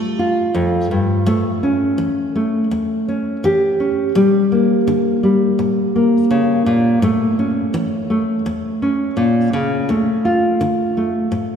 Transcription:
0, 0, Header, 1, 2, 480
1, 0, Start_track
1, 0, Tempo, 718563
1, 847, Time_signature, 4, 2, 24, 8
1, 7722, End_track
2, 0, Start_track
2, 0, Title_t, "Nylon-string guitar"
2, 0, Program_c, 0, 24
2, 0, Note_on_c, 0, 45, 52
2, 0, Note_on_c, 0, 57, 45
2, 0, Note_on_c, 0, 65, 51
2, 121, Note_off_c, 0, 65, 0
2, 129, Note_on_c, 0, 65, 50
2, 313, Note_off_c, 0, 45, 0
2, 363, Note_on_c, 0, 41, 51
2, 605, Note_off_c, 0, 41, 0
2, 608, Note_on_c, 0, 43, 46
2, 821, Note_off_c, 0, 65, 0
2, 840, Note_off_c, 0, 57, 0
2, 845, Note_on_c, 0, 45, 61
2, 848, Note_off_c, 0, 43, 0
2, 848, Note_on_c, 0, 57, 52
2, 1089, Note_on_c, 0, 61, 46
2, 1280, Note_off_c, 0, 45, 0
2, 1323, Note_on_c, 0, 52, 53
2, 1565, Note_off_c, 0, 57, 0
2, 1573, Note_on_c, 0, 57, 53
2, 1760, Note_off_c, 0, 52, 0
2, 1813, Note_on_c, 0, 40, 49
2, 2053, Note_off_c, 0, 61, 0
2, 2061, Note_on_c, 0, 61, 51
2, 2245, Note_off_c, 0, 40, 0
2, 2298, Note_on_c, 0, 52, 53
2, 2304, Note_on_c, 0, 67, 49
2, 2530, Note_off_c, 0, 61, 0
2, 2538, Note_on_c, 0, 61, 46
2, 2728, Note_off_c, 0, 52, 0
2, 2747, Note_off_c, 0, 57, 0
2, 2747, Note_off_c, 0, 61, 0
2, 2751, Note_off_c, 0, 67, 0
2, 2774, Note_on_c, 0, 46, 64
2, 2778, Note_on_c, 0, 55, 53
2, 3019, Note_on_c, 0, 58, 45
2, 3207, Note_off_c, 0, 46, 0
2, 3257, Note_on_c, 0, 50, 57
2, 3488, Note_off_c, 0, 55, 0
2, 3496, Note_on_c, 0, 55, 47
2, 3687, Note_off_c, 0, 50, 0
2, 3733, Note_on_c, 0, 46, 52
2, 3971, Note_off_c, 0, 58, 0
2, 3979, Note_on_c, 0, 58, 46
2, 4165, Note_off_c, 0, 46, 0
2, 4212, Note_on_c, 0, 49, 50
2, 4449, Note_off_c, 0, 49, 0
2, 4451, Note_on_c, 0, 46, 45
2, 4666, Note_off_c, 0, 58, 0
2, 4688, Note_off_c, 0, 46, 0
2, 4691, Note_on_c, 0, 45, 63
2, 4693, Note_off_c, 0, 55, 0
2, 4698, Note_on_c, 0, 57, 54
2, 4936, Note_on_c, 0, 61, 48
2, 5122, Note_off_c, 0, 45, 0
2, 5170, Note_on_c, 0, 52, 57
2, 5409, Note_off_c, 0, 57, 0
2, 5411, Note_on_c, 0, 57, 44
2, 5601, Note_off_c, 0, 52, 0
2, 5651, Note_on_c, 0, 40, 53
2, 5885, Note_off_c, 0, 61, 0
2, 5893, Note_on_c, 0, 61, 50
2, 6080, Note_off_c, 0, 40, 0
2, 6124, Note_on_c, 0, 46, 48
2, 6364, Note_off_c, 0, 46, 0
2, 6368, Note_on_c, 0, 49, 47
2, 6579, Note_off_c, 0, 61, 0
2, 6606, Note_off_c, 0, 49, 0
2, 6606, Note_on_c, 0, 38, 62
2, 6608, Note_off_c, 0, 57, 0
2, 6611, Note_on_c, 0, 57, 50
2, 6847, Note_on_c, 0, 65, 51
2, 7035, Note_off_c, 0, 38, 0
2, 7086, Note_on_c, 0, 50, 57
2, 7326, Note_off_c, 0, 57, 0
2, 7328, Note_on_c, 0, 57, 47
2, 7514, Note_off_c, 0, 50, 0
2, 7559, Note_on_c, 0, 45, 55
2, 7722, Note_off_c, 0, 45, 0
2, 7722, Note_off_c, 0, 57, 0
2, 7722, Note_off_c, 0, 65, 0
2, 7722, End_track
0, 0, End_of_file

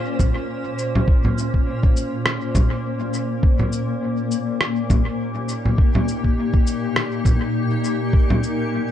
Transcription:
0, 0, Header, 1, 3, 480
1, 0, Start_track
1, 0, Tempo, 588235
1, 880, Time_signature, 4, 2, 24, 8
1, 7275, End_track
2, 0, Start_track
2, 0, Title_t, "Ambient pad"
2, 0, Program_c, 0, 92
2, 0, Note_on_c, 0, 46, 76
2, 0, Note_on_c, 0, 58, 94
2, 0, Note_on_c, 0, 61, 80
2, 0, Note_on_c, 0, 65, 74
2, 0, Note_on_c, 0, 72, 69
2, 2800, Note_off_c, 0, 65, 0
2, 3184, Note_on_c, 0, 63, 77
2, 3441, Note_off_c, 0, 72, 0
2, 3641, Note_on_c, 0, 67, 84
2, 4423, Note_off_c, 0, 61, 0
2, 5052, Note_on_c, 0, 70, 78
2, 7275, Note_off_c, 0, 46, 0
2, 7275, Note_off_c, 0, 58, 0
2, 7275, Note_off_c, 0, 63, 0
2, 7275, Note_off_c, 0, 67, 0
2, 7275, Note_off_c, 0, 70, 0
2, 7275, End_track
3, 0, Start_track
3, 0, Title_t, "Drums"
3, 159, Note_on_c, 9, 64, 75
3, 159, Note_on_c, 9, 82, 53
3, 160, Note_on_c, 9, 36, 106
3, 241, Note_off_c, 9, 36, 0
3, 241, Note_off_c, 9, 64, 0
3, 241, Note_off_c, 9, 82, 0
3, 640, Note_on_c, 9, 82, 54
3, 722, Note_off_c, 9, 82, 0
3, 778, Note_on_c, 9, 64, 77
3, 860, Note_off_c, 9, 64, 0
3, 879, Note_on_c, 9, 36, 120
3, 961, Note_off_c, 9, 36, 0
3, 1018, Note_on_c, 9, 64, 76
3, 1100, Note_off_c, 9, 64, 0
3, 1126, Note_on_c, 9, 82, 52
3, 1207, Note_off_c, 9, 82, 0
3, 1256, Note_on_c, 9, 36, 61
3, 1338, Note_off_c, 9, 36, 0
3, 1496, Note_on_c, 9, 36, 107
3, 1577, Note_off_c, 9, 36, 0
3, 1604, Note_on_c, 9, 82, 51
3, 1685, Note_off_c, 9, 82, 0
3, 1841, Note_on_c, 9, 37, 94
3, 1922, Note_off_c, 9, 37, 0
3, 2079, Note_on_c, 9, 36, 110
3, 2081, Note_on_c, 9, 64, 75
3, 2081, Note_on_c, 9, 82, 54
3, 2161, Note_off_c, 9, 36, 0
3, 2162, Note_off_c, 9, 64, 0
3, 2162, Note_off_c, 9, 82, 0
3, 2558, Note_on_c, 9, 82, 51
3, 2639, Note_off_c, 9, 82, 0
3, 2799, Note_on_c, 9, 36, 114
3, 2881, Note_off_c, 9, 36, 0
3, 2933, Note_on_c, 9, 64, 75
3, 3014, Note_off_c, 9, 64, 0
3, 3039, Note_on_c, 9, 82, 49
3, 3120, Note_off_c, 9, 82, 0
3, 3519, Note_on_c, 9, 82, 51
3, 3601, Note_off_c, 9, 82, 0
3, 3759, Note_on_c, 9, 37, 92
3, 3840, Note_off_c, 9, 37, 0
3, 3998, Note_on_c, 9, 64, 76
3, 3998, Note_on_c, 9, 82, 50
3, 3999, Note_on_c, 9, 36, 106
3, 4080, Note_off_c, 9, 64, 0
3, 4080, Note_off_c, 9, 82, 0
3, 4081, Note_off_c, 9, 36, 0
3, 4476, Note_on_c, 9, 82, 50
3, 4557, Note_off_c, 9, 82, 0
3, 4614, Note_on_c, 9, 64, 73
3, 4696, Note_off_c, 9, 64, 0
3, 4718, Note_on_c, 9, 36, 116
3, 4800, Note_off_c, 9, 36, 0
3, 4855, Note_on_c, 9, 64, 77
3, 4937, Note_off_c, 9, 64, 0
3, 4962, Note_on_c, 9, 82, 49
3, 5043, Note_off_c, 9, 82, 0
3, 5095, Note_on_c, 9, 36, 58
3, 5176, Note_off_c, 9, 36, 0
3, 5334, Note_on_c, 9, 36, 99
3, 5415, Note_off_c, 9, 36, 0
3, 5441, Note_on_c, 9, 82, 51
3, 5523, Note_off_c, 9, 82, 0
3, 5681, Note_on_c, 9, 37, 90
3, 5763, Note_off_c, 9, 37, 0
3, 5916, Note_on_c, 9, 36, 99
3, 5920, Note_on_c, 9, 64, 80
3, 5920, Note_on_c, 9, 82, 50
3, 5998, Note_off_c, 9, 36, 0
3, 6002, Note_off_c, 9, 64, 0
3, 6002, Note_off_c, 9, 82, 0
3, 6397, Note_on_c, 9, 82, 51
3, 6479, Note_off_c, 9, 82, 0
3, 6636, Note_on_c, 9, 36, 111
3, 6718, Note_off_c, 9, 36, 0
3, 6775, Note_on_c, 9, 64, 79
3, 6856, Note_off_c, 9, 64, 0
3, 6880, Note_on_c, 9, 82, 50
3, 6962, Note_off_c, 9, 82, 0
3, 7275, End_track
0, 0, End_of_file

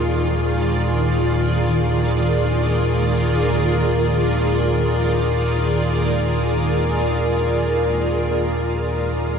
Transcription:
0, 0, Header, 1, 4, 480
1, 0, Start_track
1, 0, Tempo, 500000
1, 9013, End_track
2, 0, Start_track
2, 0, Title_t, "Ambient pad"
2, 0, Program_c, 0, 92
2, 0, Note_on_c, 0, 51, 74
2, 0, Note_on_c, 0, 65, 84
2, 0, Note_on_c, 0, 68, 83
2, 0, Note_on_c, 0, 70, 79
2, 0, Note_on_c, 0, 74, 77
2, 9013, Note_off_c, 0, 51, 0
2, 9013, Note_off_c, 0, 65, 0
2, 9013, Note_off_c, 0, 68, 0
2, 9013, Note_off_c, 0, 70, 0
2, 9013, Note_off_c, 0, 74, 0
2, 9013, End_track
3, 0, Start_track
3, 0, Title_t, "Singing bowl"
3, 0, Program_c, 1, 14
3, 0, Note_on_c, 1, 65, 70
3, 9013, Note_off_c, 1, 65, 0
3, 9013, End_track
4, 0, Start_track
4, 0, Title_t, "Synth drone"
4, 0, Program_c, 2, 95
4, 0, Note_on_c, 2, 39, 67
4, 0, Note_on_c, 2, 46, 69
4, 9013, Note_off_c, 2, 39, 0
4, 9013, Note_off_c, 2, 46, 0
4, 9013, End_track
0, 0, End_of_file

